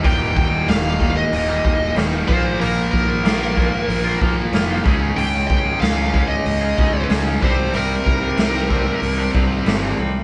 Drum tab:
HH |o-o-o-o-|o-o-o-o-|o-o-o-o-|o-o-o-o-|
SD |--o---o-|--o---o-|--o---o-|--o---o-|
BD |oo-o-o-o|-o-o-o-o|-o-o-o-o|-o-o-o--|